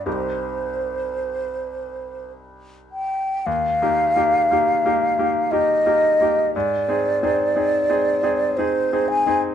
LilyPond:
<<
  \new Staff \with { instrumentName = "Flute" } { \time 3/4 \key ees \major \tempo 4 = 58 c''2 r8 g''8 | f''2 ees''4 | d''2 c''8 aes''8 | }
  \new Staff \with { instrumentName = "Grand piano" } { \time 3/4 \key ees \major <c, c' ees' g'>2. | \tuplet 3/2 { ees,8 <bes ees' g'>8 <bes ees' g'>8 <bes ees' g'>8 <bes ees' g'>8 <bes ees' g'>8 <bes ees' g'>8 <bes ees' g'>8 <bes ees' g'>8 } | \tuplet 3/2 { aes,8 <c' ees' aes'>8 <c' ees' aes'>8 <c' ees' aes'>8 <c' ees' aes'>8 <c' ees' aes'>8 <c' ees' aes'>8 <c' ees' aes'>8 <c' ees' aes'>8 } | }
>>